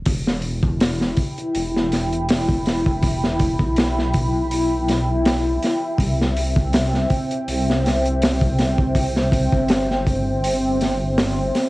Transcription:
0.06 E1 E4 E5 G5 B5, kick, open hi-hat
0.27 snare
0.42 open hi-hat
0.63 kick
0.80 snare, open hi-hat
1.01 snare
1.16 kick, open hi-hat
1.38 closed hi-hat
1.55 E1, open hi-hat
1.76 snare
1.92 snare, open hi-hat
2.13 closed hi-hat
2.29 snare, open hi-hat
2.49 kick
2.66 snare, open hi-hat
2.86 kick
3.03 kick, open hi-hat
3.24 snare
3.39 kick, open hi-hat
3.59 B1, kick
3.76 snare, open hi-hat
3.99 snare
4.14 kick, open hi-hat
4.51 open hi-hat
4.89 snare, open hi-hat
5.25 snare, open hi-hat
5.63 snare, open hi-hat
5.98 C2 C4 C5 G5, kick, open hi-hat
6.22 snare
6.37 open hi-hat
6.56 kick
6.73 snare, open hi-hat
6.94 snare
7.10 kick, open hi-hat
7.31 closed hi-hat
7.48 C2, open hi-hat
7.70 snare
7.86 snare, open hi-hat
8.05 closed hi-hat
8.22 snare, open hi-hat
8.41 kick
8.59 snare, open hi-hat
8.78 kick
8.95 kick, open hi-hat
9.16 snare
9.32 kick, open hi-hat
9.52 G1, kick
9.68 snare, open hi-hat
9.91 snare
10.07 kick, open hi-hat
10.44 open hi-hat
10.81 snare, open hi-hat
11.18 snare, open hi-hat
11.55 snare, open hi-hat

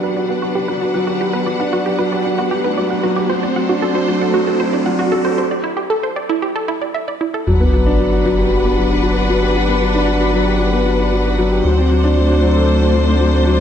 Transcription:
Already playing: F#3 B3 D4 F#4 B4 F#5, riser
0.03 G4 B4
0.17 F#3 D5
0.29 B3 F#5
0.42 F#3 F#4
0.55 D4 G4
0.68 F#3 B4
0.81 F#4 D5
0.94 F#3 F#5
1.07 F#4 G4
1.21 F#3 G4
1.33 B3 B4
1.46 F#3 D5
1.60 D4 F#5
1.73 F#3 F#4
1.86 F#4 G4
1.99 F#3 B4
2.12 G4 D5
2.25 F#3 F#5
2.38 B3 F#4
2.51 F#3 G4
2.64 D4 B4
2.78 F#3 D5
2.90 F#4 F#5
3.03 F#3 F#4
3.16 G4
3.30 F#3 A3 C5
3.43 C4 D5
3.56 F#3 F#5
3.69 D4 F#4
3.82 F#3 A4
3.95 F#4 C5
4.08 F#3 D5
4.21 A4 F#5
4.34 F#3 F#4
4.47 C4 A4
4.60 F#3 C5
4.73 D4 D5
4.86 F#3 F#5
4.99 F#4
5.12 F#3 A4
5.25 A4 C5
5.38 C5
5.51 D5
5.64 E4
5.77 G4
5.90 A4
6.03 C5
6.16 D5
6.29 E4
6.42 G4
6.56 A4
6.68 E4
6.82 D5
6.94 E5
7.08 D5
7.21 E4
7.34 A4
7.47 G1 F#3 D4 B4 F#5, sub drop
7.60 B3
7.73 F#3
7.86 D4
7.99 F#3
8.12 F#4
8.25 F#3
8.38 G4
8.52 F#3
8.65 B3
8.78 F#3
8.91 D4
9.03 F#3
9.16 F#4
9.30 F#3
9.43 G4
9.56 F#3
9.69 B3
9.81 F#3
9.95 D4
10.08 F#3
10.21 F#4
10.34 F#3
10.47 G4
10.60 F#3
10.73 B3
10.86 F#3
10.99 D4
11.12 F#3
11.25 F#4
11.38 F#3
11.51 G4
11.65 D2 F#3 A3 D4 C5
11.78 C4
11.91 F#3
12.04 D4
12.17 F#3
12.30 F#4
12.43 F#3
12.56 A4
12.69 F#3
12.82 C4
12.94 F#3
13.08 D4
13.21 F#3
13.34 F#4
13.47 F#3

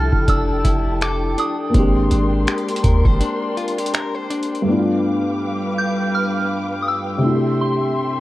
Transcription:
Already playing: C2 F3 A3 D4 E4 G4 A4 G5 A5 F6
0.13 F1, kick
0.28 F1 D4 E6, kick, closed hi-hat
0.64 F1 E4, kick, closed hi-hat
1.01 A4 D6, finger snap, closed hi-hat
1.38 D4 D#6, closed hi-hat
1.70 A#3 C4
1.74 G#1 G#3 D4 A#4 C6, kick, closed hi-hat
1.79 G4
2.11 G#1 D4, closed hi-hat
2.47 G4, finger snap, closed hi-hat
2.58 closed hi-hat
2.69 closed hi-hat
2.76 closed hi-hat
2.84 D#2 A#4, kick, closed hi-hat
3.05 G#1 C5, kick
3.21 D4, closed hi-hat
3.57 F4, closed hi-hat
3.68 closed hi-hat
3.78 G4, closed hi-hat
3.86 closed hi-hat
3.94 A#4, finger snap, closed hi-hat
4.15 C5
4.30 D4, closed hi-hat
4.43 closed hi-hat
4.55 closed hi-hat
4.62 G2 A3
4.67 B3 D4 B4 F5 G5 D6
4.72 E4
4.78 F4
5.78 G6
6.15 F6
6.82 D#6
6.88 E6
7.18 C3 A3
7.23 A3 D4 E4 E5 C6
7.28 F#4
7.34 G4
7.61 C6

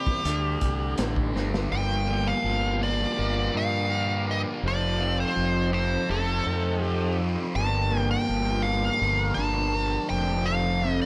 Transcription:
Already playing: C3 E3 G3 A#3 C4 G4 C5
0.07 kick, snare
0.24 D2 D3 G3 A3 D4 G4 A4, closed hi-hat
0.61 C2, kick, closed hi-hat
0.98 A1, snare, closed hi-hat
1.16 kick
1.34 G1 D3 A3 D4, snare
1.54 snare
1.70 G1 G2 D3 F3 A#3 G4 A#4 G5
2.07 A#3
2.27 F5
2.44 G1 F3
2.81 A#3 D5
3.19 G1 A#4
3.53 G2 D4 F5
3.90 A#4
4.28 A#3 D#5
4.63 F1 F3 C4 D#4 A4 C5
4.68 D5
5.00 C4
5.20 C5
5.36 F1 F3
5.72 C4 C5
6.09 F1 A4
6.46 F2 D#4
6.83 G4 A4
7.20 C4
7.55 G1 G2 D3 A#3 G4 A#4 A5
7.91 A#3
8.00 G5
8.11 G5
8.27 G1 F3
8.62 A#3 F5
9.01 G1 A#4
9.34 G1 D4 A5
9.75 A#4
10.09 F1 F3 C4 A4 C5 G5
10.46 F3 F5
10.84 C4
10.91 D#5
11.02 D#5

